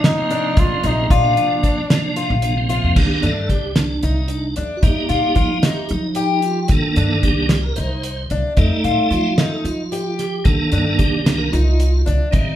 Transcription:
0.00 0.20 D#4 medium
0.04 0.61 D#4 loud
0.04 snare loud
0.04 closed hi-hat medium
0.18 1.06 C3 medium
0.18 1.06 F3 medium
0.18 1.06 A#3 medium
0.18 1.06 C4 medium
0.30 0.73 D4 medium
0.30 closed hi-hat medium
0.57 0.69 C3 medium
0.57 0.88 F4 medium
0.57 kick loud
0.57 closed hi-hat medium
0.83 1.08 A#1 medium
0.83 1.05 D#4 medium
0.83 1.14 D#4 medium
0.83 closed hi-hat medium
1.10 1.35 A#1 medium
1.10 2.44 D4 medium
1.10 1.53 F4 medium
1.10 kick loud
1.10 closed hi-hat medium
1.24 1.35 C3 medium
1.24 1.35 F3 medium
1.24 1.35 A#3 medium
1.24 1.35 D4 medium
1.37 1.81 C3 medium
1.37 1.81 F3 medium
1.37 1.81 A#3 medium
1.37 1.82 D4 medium
1.37 closed hi-hat medium
1.63 2.06 D4 medium
1.63 kick medium
1.63 closed hi-hat medium
1.90 2.35 C3 medium
1.90 2.35 F3 medium
1.90 2.34 A#3 medium
1.90 2.35 D4 medium
1.90 snare loud
1.90 closed hi-hat medium
2.16 2.59 F4 medium
2.16 closed hi-hat medium
2.30 2.79 A#1 medium
2.42 2.55 C3 medium
2.42 2.55 F3 medium
2.42 2.55 A#3 medium
2.42 2.55 D4 medium
2.42 closed hi-hat medium
2.57 2.97 C3 medium
2.57 2.96 F3 medium
2.57 2.96 A#3 medium
2.57 2.97 C4 medium
2.69 2.91 F4 medium
2.69 closed hi-hat medium
2.84 2.95 F2 medium
2.96 3.08 C2 medium
2.96 3.31 D#3 soft
2.96 3.32 A#3 soft
2.96 3.32 D4 soft
2.96 3.22 G4 medium
2.96 kick loud
2.96 crash medium
3.22 3.47 G2 medium
3.22 3.65 D4 medium
3.22 3.50 A4 medium
3.22 closed hi-hat medium
3.49 3.98 C2 medium
3.49 3.77 G4 medium
3.49 kick medium
3.49 closed hi-hat medium
3.76 4.04 D4 medium
3.76 snare loud
3.76 closed hi-hat medium
4.03 4.52 C2 medium
4.03 4.46 D#4 medium
4.03 4.28 D#4 medium
4.03 closed hi-hat medium
4.28 4.55 D4 medium
4.28 closed hi-hat medium
4.56 4.69 E2 medium
4.56 4.78 D4 medium
4.56 closed hi-hat medium
4.77 4.83 F#4 medium
4.83 4.95 F2 medium
4.83 5.59 G3 soft
4.83 5.60 A#3 soft
4.83 5.04 D#4 medium
4.83 5.38 D#4 soft
4.83 kick loud
4.83 closed hi-hat medium
4.87 5.40 G4 medium
5.09 5.22 A#2 medium
5.09 5.30 F4 medium
5.09 closed hi-hat medium
5.35 5.60 F3 medium
5.35 5.57 F4 medium
5.35 kick medium
5.35 closed hi-hat medium
5.40 5.65 D#4 medium
5.63 6.06 D#4 medium
5.63 5.92 G4 medium
5.63 snare loud
5.63 closed hi-hat medium
5.89 6.66 F3 medium
5.89 6.41 D#4 medium
5.89 closed hi-hat medium
6.15 6.59 G4 medium
6.15 closed hi-hat medium
6.42 6.71 F4 medium
6.42 closed hi-hat medium
6.68 6.82 C2 medium
6.68 7.47 D#3 soft
6.68 7.47 A#3 soft
6.68 7.47 D4 medium
6.68 7.20 A4 medium
6.68 kick medium
6.68 closed hi-hat medium
6.96 7.21 G2 medium
6.96 7.39 D4 medium
6.96 closed hi-hat medium
7.23 7.73 C2 medium
7.23 7.61 G4 medium
7.23 kick medium
7.23 closed hi-hat medium
7.49 snare loud
7.49 closed hi-hat medium
7.62 7.75 A#4 medium
7.76 8.27 C2 medium
7.76 8.20 D#4 medium
7.76 8.26 C5 medium
7.76 closed hi-hat medium
8.03 closed hi-hat medium
8.30 8.43 C2 medium
8.30 8.52 D4 medium
8.30 closed hi-hat medium
8.57 8.69 F2 medium
8.57 9.33 G3 soft
8.57 9.34 A3 soft
8.57 8.79 D#4 medium
8.57 9.34 D#4 medium
8.57 9.13 A4 medium
8.57 kick loud
8.57 closed hi-hat medium
8.84 8.96 A2 medium
8.84 9.06 F4 medium
8.84 closed hi-hat medium
9.11 9.35 F3 medium
9.11 9.32 F4 medium
9.11 9.39 F4 medium
9.11 closed hi-hat medium
9.38 9.81 D#4 medium
9.38 9.65 A4 medium
9.38 snare loud
9.38 closed hi-hat medium
9.64 10.41 F3 medium
9.64 10.15 F4 medium
9.64 closed hi-hat medium
9.92 10.35 G4 medium
9.92 closed hi-hat medium
10.19 10.46 G4 medium
10.19 snare soft
10.19 closed hi-hat medium
10.44 10.58 C2 medium
10.44 11.21 D#3 soft
10.44 11.22 A#3 soft
10.44 11.22 D4 soft
10.44 11.00 A4 medium
10.44 kick loud
10.44 closed hi-hat medium
10.72 10.97 G2 medium
10.72 11.15 D4 medium
10.72 closed hi-hat medium
10.99 11.49 C2 medium
10.99 11.40 G4 medium
10.99 kick medium
10.99 closed hi-hat medium
11.25 11.50 D#3 soft
11.25 11.50 A#3 soft
11.25 11.50 D4 soft
11.25 snare loud
11.25 closed hi-hat medium
11.38 11.51 A#4 loud
11.51 12.03 C2 medium
11.51 11.96 D#4 medium
11.51 12.02 F4 medium
11.51 closed hi-hat medium
11.80 closed hi-hat medium
12.06 12.19 C2 medium
12.06 12.28 D4 medium
12.06 closed hi-hat medium
12.31 12.46 A1 medium
12.31 12.56 D#3 soft
12.31 12.56 G3 soft
12.31 12.56 C4 medium
12.31 12.54 D#4 medium
12.31 kick loud
12.31 closed hi-hat medium

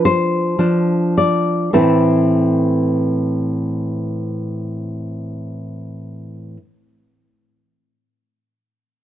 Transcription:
0.00 0.55 F3 soft
0.00 0.55 D4 soft
0.05 1.14 C5 medium
0.59 1.71 F3 soft
0.59 1.71 D4 soft
1.18 1.72 D5 medium
1.73 6.56 A2 soft
1.73 6.57 E3 soft
1.73 6.56 C4 soft
1.73 6.58 E4 soft
1.73 6.56 A4 soft

